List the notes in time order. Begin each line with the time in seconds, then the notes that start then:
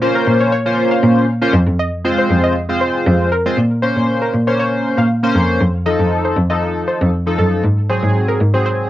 0.01 A#3 C#4 F4 C5
0.15 A#4
0.27 A#2
0.40 C#5
0.52 C#5
0.65 A#3 C#4 F4 C5
0.91 F5
1.03 A#2
1.42 A#3 C#4 F4 C5
1.54 F2
1.67 F2
1.79 D#5
2.05 G#3 C4 F4 C5
2.18 C5
2.30 F2
2.44 D#5
2.69 G#3 C4 F4 C5
2.81 C5
3.06 F2
3.32 A#4
3.45 G#3 C4 F4 C5
3.57 A#2
3.82 A#3 C#4 C5
3.96 A#2
4.22 A#4
4.34 A#2
4.47 A#3 C#4 C5 C#5
4.59 C#5
4.98 A#2 F5
5.23 A#3 C#4 C5
5.35 F2
5.61 F2
5.86 F3 D#4 A4 D#5
6.00 F2
6.25 C5
6.37 F2
6.50 F3 D#4 A4 D#5
6.88 C5
7.01 F2
7.27 F3 D#4 A4
7.39 F#2 A4
7.64 G#2
7.89 F#3 C4 G#4 C5
8.03 G#2
8.28 A#4
8.40 G#2
8.54 F#3 C4 G#4 C5
8.66 C5